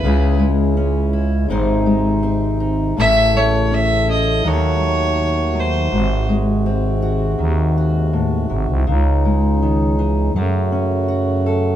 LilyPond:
<<
  \new Staff \with { instrumentName = "Fiddle" } { \time 4/4 \key cis \minor \tempo 4 = 82 b'8 r2. r8 | e''8 cis''8 e''8 dis''8 cis''4. bis'8~ | bis'8 r2. r8 | r1 | }
  \new Staff \with { instrumentName = "Steel-string acoustic guitar" } { \time 4/4 \key cis \minor << { <gis cis' e' gis'>4 cis'8 e'8 <gis bis dis' bis'>4 bis8 dis'8 | <a cis' e' a'>4 cis'8 e'8 <fis dis' fis' a'>2 | r4 bis8 fis'4 fis'4. | r2. fis'8 a'8 | } \\ { cis8 gis4. gis,8 gis4. | a,8 a4. dis8 fis4 fis8 | gis,8 gis4. dis4 a,8 bis,8 | cis8 gis8 dis8 e8 fis8 cis'4. | } >> }
  \new Staff \with { instrumentName = "Harmonium" } { \time 4/4 \key cis \minor e'2 dis'2 | e'2 fis'2~ | fis'1 | dis'2 fis'2 | }
  \new Staff \with { instrumentName = "Harmonium" } { \clef bass \time 4/4 \key cis \minor << { gis1 | a2 a2 | gis1 | gis2 a2 | } \\ { cis2 bis,2 | cis2 dis2 | bis,1 | cis2 cis2 | } >> }
  \new Staff \with { instrumentName = "FM bass" } { \clef bass \time 4/4 \key cis \minor cis,2 gis,,2 | a,,2 dis,2 | gis,,2 dis,4. gis,,16 bis,,16 | cis,2 fis,2 | }
>>